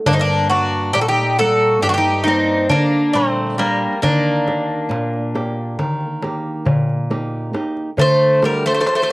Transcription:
0.06 nylon-string guitar G2, bouzouki A#3 D4, darbuka dum
0.13 bouzouki C4 D#4
0.19 bouzouki A#3 D4
0.29 darbuka tek
0.50 nylon-string guitar G3 A#3 D5, bouzouki D4 F#4, darbuka tek
0.93 nylon-string guitar A#2, bouzouki D4 G4, darbuka tek
1.01 bouzouki F#4 A4
1.08 bouzouki D#4 G4
1.17 darbuka tek
1.38 nylon-string guitar G3 A#3 D5, bouzouki F#4 A4, darbuka tek
1.81 nylon-string guitar G2, bouzouki D4 G4, darbuka tek
1.89 bouzouki D4 F#4
1.94 bouzouki D#4 G4
2.24 nylon-string guitar G3 A#3 D5, bouzouki D#4, darbuka tek
2.28 bouzouki C4
2.69 nylon-string guitar D3, bouzouki A#3 D4, darbuka dum
3.13 nylon-string guitar A#2 G3 D4, bouzouki A3 C4, darbuka tek
3.37 darbuka tek
3.58 bouzouki G3 A#3, nylon-string guitar G3 A#3 D4, darbuka tek
4.02 nylon-string guitar D#3, bouzouki A#3 D4, darbuka dum
4.48 nylon-string guitar A#3 G4, darbuka tek
4.69 darbuka tek
4.89 nylon-string guitar A#2, darbuka tek
5.13 darbuka tek
5.35 nylon-string guitar A#3 G4, darbuka tek
5.79 nylon-string guitar D#3, darbuka tek, darbuka dum
6.01 darbuka tek
6.22 nylon-string guitar A#3 G4, darbuka tek
6.65 nylon-string guitar A#2, darbuka dum
6.89 darbuka tek
7.10 nylon-string guitar A#3 D#4 G4, darbuka tek
7.53 nylon-string guitar A#3 D#4 G4, darbuka tek
7.77 darbuka tek
7.97 nylon-string guitar D3, bouzouki A3, darbuka dum
8.01 bouzouki C5
8.41 bouzouki G3 A#4, nylon-string guitar A3 D4 F#4, darbuka tek
8.66 bouzouki A3 C5
8.74 bouzouki A3 C5
8.80 bouzouki A3 C5
8.86 bouzouki A3 C5, darbuka tek
8.95 bouzouki A3 C5
9.02 bouzouki A3 C5
9.08 darbuka tek

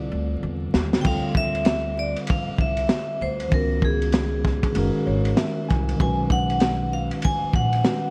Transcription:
Already playing: tine electric piano D3 G3 C4 F4 A4, vibraphone D5
0.12 upright bass D2
0.43 upright bass E2
0.74 upright bass D#2, snare
0.93 snare
1.01 upright bass D2, tine electric piano D3 G3 C4, vibraphone G5, kick, crash
1.06 tine electric piano F4 A4, vibraphone F5
1.35 vibraphone E5, kick
1.55 ride
1.65 snare, hi-hat pedal, ride
1.99 vibraphone D5
2.16 ride
2.27 vibraphone F5, kick, ride
2.48 muted upright bass stroke
2.58 upright bass C2, vibraphone E5, kick
2.77 ride
2.89 snare, hi-hat pedal, ride
3.21 upright bass D2, vibraphone C5
3.40 ride
3.49 upright bass C#2, tine electric piano D#3 G#3 C#4, kick, ride
3.54 tine electric piano B3 F#4, vibraphone A#4
3.82 vibraphone G#4, kick
4.02 ride
4.12 snare, hi-hat pedal, ride
4.45 kick, snare
4.63 kick, ride
4.72 upright bass F#1, tine electric piano D#3 G#3 C#4, ride
4.77 tine electric piano F#4 A#4
4.96 muted upright bass stroke
5.07 upright bass G#1, tine electric piano C#5
5.25 ride
5.37 tine electric piano E5, snare, hi-hat pedal, ride
5.69 upright bass C2, tine electric piano G#5, kick, snare
5.89 ride
5.96 tine electric piano D#3 G#3 C#4, kick
6.00 upright bass B1, tine electric piano F#4 B4, vibraphone G#5, ride
6.30 vibraphone F#5, kick
6.50 ride
6.60 snare, hi-hat pedal, ride
6.93 vibraphone F5
7.11 ride
7.22 vibraphone G#5, kick, ride
7.43 muted upright bass stroke
7.53 upright bass A#1, vibraphone F#5, kick
7.73 ride
7.84 tine electric piano D#3 G#3 C#4 F#4 B4, snare, hi-hat pedal, ride

